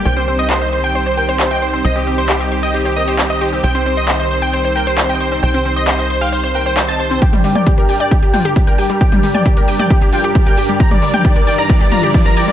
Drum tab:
HH |----------------|----------------|----------------|----------------|
CP |----x-------x---|----x-------x---|----x-------x---|----x-------x---|
T2 |----------------|----------------|----------------|----------------|
BD |----------------|----------------|----------------|----------------|

HH |xxoxxxoxxxoxxxox|xxoxxxoxxxoxxxox|xxoxxxoxxxoxxxox|
CP |----------------|----------------|----------------|
T2 |-o-o------o-----|-o-o---o--------|-o-o------o-----|
BD |o---o---o---o---|o---o---o---o---|o---o---o---o---|